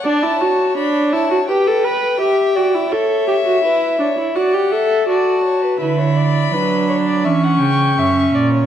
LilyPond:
<<
  \new Staff \with { instrumentName = "Violin" } { \time 4/4 \key d \major \tempo 4 = 83 a''4 b''8 a''8 g''2 | e''2 fis''4 a''4 | \key b \minor b''2 cis'''2 | }
  \new Staff \with { instrumentName = "Violin" } { \time 4/4 \key d \major d''8 cis''4. b'4 e''8 d''8 | cis''4 b'8 cis''8 d''8 e''8 d''8 cis''16 b'16 | \key b \minor b'16 cis''16 d''8 b'8 cis''16 d''16 e''16 fis''16 g''8 e''8 d''16 cis''16 | }
  \new Staff \with { instrumentName = "Viola" } { \time 4/4 \key d \major d'16 e'16 fis'8 d'8 e'16 fis'16 g'16 a'16 b'8 g'8 fis'16 e'16 | a'8 g'16 fis'16 e'8 d'16 e'16 fis'16 g'16 a'8 fis'4 | \key b \minor e'4 d'4 cis'4 cis'4 | }
  \new Staff \with { instrumentName = "Cello" } { \clef bass \time 4/4 \key d \major r1 | r1 | \key b \minor d4 fis4 e8 cis8 fis,8 ais,8 | }
>>